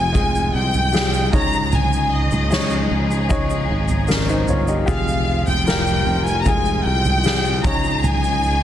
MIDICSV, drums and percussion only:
0, 0, Header, 1, 2, 480
1, 0, Start_track
1, 0, Key_signature, -4, "minor"
1, 0, Tempo, 789474
1, 1048, Time_signature, 4, 2, 24, 8
1, 5247, End_track
2, 0, Start_track
2, 0, Title_t, "Drums"
2, 90, Note_on_c, 9, 82, 56
2, 91, Note_on_c, 9, 36, 83
2, 91, Note_on_c, 9, 43, 68
2, 151, Note_off_c, 9, 82, 0
2, 152, Note_off_c, 9, 36, 0
2, 152, Note_off_c, 9, 43, 0
2, 214, Note_on_c, 9, 82, 41
2, 275, Note_off_c, 9, 82, 0
2, 447, Note_on_c, 9, 82, 46
2, 452, Note_on_c, 9, 43, 64
2, 508, Note_off_c, 9, 82, 0
2, 513, Note_off_c, 9, 43, 0
2, 565, Note_on_c, 9, 82, 67
2, 580, Note_on_c, 9, 38, 106
2, 625, Note_off_c, 9, 82, 0
2, 640, Note_off_c, 9, 38, 0
2, 690, Note_on_c, 9, 82, 48
2, 751, Note_off_c, 9, 82, 0
2, 808, Note_on_c, 9, 82, 48
2, 810, Note_on_c, 9, 36, 92
2, 812, Note_on_c, 9, 43, 61
2, 869, Note_off_c, 9, 82, 0
2, 871, Note_off_c, 9, 36, 0
2, 873, Note_off_c, 9, 43, 0
2, 928, Note_on_c, 9, 82, 47
2, 989, Note_off_c, 9, 82, 0
2, 1046, Note_on_c, 9, 82, 66
2, 1050, Note_on_c, 9, 43, 104
2, 1107, Note_off_c, 9, 82, 0
2, 1111, Note_off_c, 9, 43, 0
2, 1172, Note_on_c, 9, 82, 49
2, 1233, Note_off_c, 9, 82, 0
2, 1405, Note_on_c, 9, 82, 42
2, 1411, Note_on_c, 9, 43, 61
2, 1466, Note_off_c, 9, 82, 0
2, 1471, Note_off_c, 9, 43, 0
2, 1528, Note_on_c, 9, 82, 64
2, 1536, Note_on_c, 9, 38, 111
2, 1589, Note_off_c, 9, 82, 0
2, 1597, Note_off_c, 9, 38, 0
2, 1642, Note_on_c, 9, 82, 35
2, 1703, Note_off_c, 9, 82, 0
2, 1891, Note_on_c, 9, 82, 47
2, 1952, Note_off_c, 9, 82, 0
2, 2006, Note_on_c, 9, 82, 54
2, 2009, Note_on_c, 9, 36, 91
2, 2009, Note_on_c, 9, 43, 62
2, 2066, Note_off_c, 9, 82, 0
2, 2070, Note_off_c, 9, 36, 0
2, 2070, Note_off_c, 9, 43, 0
2, 2128, Note_on_c, 9, 82, 45
2, 2188, Note_off_c, 9, 82, 0
2, 2361, Note_on_c, 9, 82, 45
2, 2365, Note_on_c, 9, 43, 65
2, 2421, Note_off_c, 9, 82, 0
2, 2426, Note_off_c, 9, 43, 0
2, 2479, Note_on_c, 9, 82, 59
2, 2493, Note_on_c, 9, 38, 102
2, 2539, Note_off_c, 9, 82, 0
2, 2554, Note_off_c, 9, 38, 0
2, 2607, Note_on_c, 9, 82, 46
2, 2667, Note_off_c, 9, 82, 0
2, 2723, Note_on_c, 9, 82, 47
2, 2726, Note_on_c, 9, 43, 65
2, 2784, Note_off_c, 9, 82, 0
2, 2787, Note_off_c, 9, 43, 0
2, 2843, Note_on_c, 9, 82, 44
2, 2904, Note_off_c, 9, 82, 0
2, 2966, Note_on_c, 9, 36, 104
2, 2966, Note_on_c, 9, 43, 107
2, 2966, Note_on_c, 9, 82, 61
2, 3027, Note_off_c, 9, 36, 0
2, 3027, Note_off_c, 9, 43, 0
2, 3027, Note_off_c, 9, 82, 0
2, 3089, Note_on_c, 9, 82, 46
2, 3150, Note_off_c, 9, 82, 0
2, 3323, Note_on_c, 9, 82, 46
2, 3329, Note_on_c, 9, 43, 72
2, 3383, Note_off_c, 9, 82, 0
2, 3389, Note_off_c, 9, 43, 0
2, 3447, Note_on_c, 9, 82, 65
2, 3455, Note_on_c, 9, 38, 113
2, 3508, Note_off_c, 9, 82, 0
2, 3516, Note_off_c, 9, 38, 0
2, 3566, Note_on_c, 9, 82, 37
2, 3627, Note_off_c, 9, 82, 0
2, 3812, Note_on_c, 9, 82, 49
2, 3873, Note_off_c, 9, 82, 0
2, 3925, Note_on_c, 9, 43, 66
2, 3925, Note_on_c, 9, 82, 62
2, 3928, Note_on_c, 9, 36, 92
2, 3985, Note_off_c, 9, 43, 0
2, 3986, Note_off_c, 9, 82, 0
2, 3989, Note_off_c, 9, 36, 0
2, 4045, Note_on_c, 9, 82, 42
2, 4106, Note_off_c, 9, 82, 0
2, 4284, Note_on_c, 9, 82, 48
2, 4287, Note_on_c, 9, 43, 66
2, 4345, Note_off_c, 9, 82, 0
2, 4347, Note_off_c, 9, 43, 0
2, 4400, Note_on_c, 9, 82, 59
2, 4415, Note_on_c, 9, 38, 106
2, 4461, Note_off_c, 9, 82, 0
2, 4476, Note_off_c, 9, 38, 0
2, 4526, Note_on_c, 9, 82, 46
2, 4587, Note_off_c, 9, 82, 0
2, 4646, Note_on_c, 9, 82, 50
2, 4648, Note_on_c, 9, 36, 105
2, 4648, Note_on_c, 9, 43, 58
2, 4706, Note_off_c, 9, 82, 0
2, 4708, Note_off_c, 9, 43, 0
2, 4709, Note_off_c, 9, 36, 0
2, 4767, Note_on_c, 9, 82, 41
2, 4828, Note_off_c, 9, 82, 0
2, 4886, Note_on_c, 9, 43, 113
2, 4888, Note_on_c, 9, 82, 58
2, 4947, Note_off_c, 9, 43, 0
2, 4948, Note_off_c, 9, 82, 0
2, 5009, Note_on_c, 9, 82, 46
2, 5070, Note_off_c, 9, 82, 0
2, 5125, Note_on_c, 9, 82, 44
2, 5185, Note_off_c, 9, 82, 0
2, 5247, End_track
0, 0, End_of_file